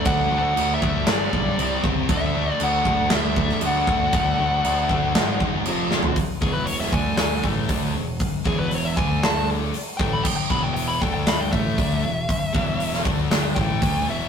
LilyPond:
<<
  \new Staff \with { instrumentName = "Lead electric guitar" } { \time 4/4 \key d \lydian \tempo 4 = 118 \tuplet 3/2 { fis''4 fis''8~ fis''8 e''4 } d''4. r8 | e''4 fis''4 e''4 fis''4~ | fis''2. r4 | r8 gis'16 b'16 cis''16 e''16 gis''8 gis''8 r4. |
r8 gis'16 b'16 cis''16 e''16 gis''8 a''8 r4 g''16 b''16 | g''16 g''16 b''16 g''16 g''16 b''16 g''16 g''16 b''16 g''16 e''4.~ | e''4. r4 g''4 e''8 | }
  \new Staff \with { instrumentName = "Overdriven electric guitar" } { \time 4/4 \key d \lydian <d a d' fis'>4. <d a d' fis'>8 <g d' g' d''>4 <c g c' g'>4 | <d a d' fis'>4. <d a d' fis'>4. <d a d' fis'>4 | <d a d' fis'>4. <d a d' fis'>8 <gis dis' gis' dis''>4 <f c' f' c''>4 | r1 |
r1 | r1 | r1 | }
  \new Staff \with { instrumentName = "Distorted electric guitar" } { \clef bass \time 4/4 \key d \lydian <d a d'>8 <d a d'>8 <d a d'>8 <d a d'>8 <g, d g>8 <g, d g>8 <c g c'>8 <c g c'>8 | <d a d'>8 <d a d'>8 <d a d'>8 <d a d'>8 <d a d'>8 <d a d'>8 <d a d'>8 <d a d'>8 | <d a d'>8 <d a d'>8 <d a d'>8 <d a d'>8 <gis, dis gis>8 <gis, dis gis>8 <f, c f>8 <f, c f>8 | r8 <e, b, e>4 <d a d'>4 <a, e a>8 <d a d'>8 <e, b,>8 |
r8 <e, b, e>4 <d a d'>4. r8 <a, e a>8 | r8 <e, b, e>4 <d a d'>4 <a, e a>8 <d a d'>8 <e, b,>8 | r8 <e, b, e>4 <d a d'>8 <d a d'>8 <a, e a>8 <d a d'>8 <e, b, e>8 | }
  \new Staff \with { instrumentName = "Overdriven electric guitar" } { \clef bass \time 4/4 \key d \lydian <d a d'>8 <d a d'>8 <d a d'>8 <d a d'>8 <g, d g>8 <g, d g>8 <c g c'>8 <c g c'>8 | <d a d'>8 <d a d'>8 <d a d'>8 <d a d'>8 <d a d'>8 <d a d'>8 <d a d'>8 <d a d'>8 | <d a d'>8 <d a d'>8 <d a d'>8 <d a d'>8 <gis, dis gis>8 <gis, dis gis>8 <f, c f>8 <f, c f>8 | r8 <e, b, e>4 <d a d'>4 <a, e a>8 <d a d'>8 <e, b,>8 |
r8 <e, b, e>4 <d a d'>4. r8 <a, e a>8 | r8 <e, b, e>4 <d a d'>4 <a, e a>8 <d a d'>8 <e, b,>8 | r8 <e, b, e>4 <d a d'>8 <d a d'>8 <a, e a>8 <d a d'>8 <e, b, e>8 | }
  \new Staff \with { instrumentName = "Picked electric bass" } { \clef bass \time 4/4 \key d \lydian d,8 d,8 d,8 d,8 g,,8 b,,8 c,8 cis,8 | d,4 d,8 d,8 d,4 d,8 d,8 | d,8 d,8 d,8 d,8 gis,,8 e,,8 f,,8 f,,8 | r8 e,,4 d,4 a,,8 d,8 e,,8 |
r8 e,,4 d,4. r8 a,,8 | r8 e,,4 d,4 a,,8 d,8 e,,8 | r8 e,,4 d,8 d,8 a,,8 d,8 e,,8 | }
  \new DrumStaff \with { instrumentName = "Drums" } \drummode { \time 4/4 <cymc bd>4 cymc8 bd8 <cymc sn>8 bd8 cymc8 bd8 | <cymc bd>4 cymc8 bd8 <cymc sn>8 bd16 sn16 cymc8 bd8 | <cymc bd>4 cymc8 bd8 <cymc sn>8 bd8 cymc8 sn16 tomfh16 | <hho bd>8 bd8 hho16 sn16 bd8 <hho sn>8 bd8 <hho bd>4 |
<hho bd>8 bd8 hho8 bd8 <hho sn>4 hho8 bd8 | <cymc bd>8 bd8 hho8 bd8 <hho sn>8 bd8 <hho bd>4 | <hho bd>8 bd8 hho16 sn16 bd8 <hho sn>8 bd8 <hho bd>4 | }
>>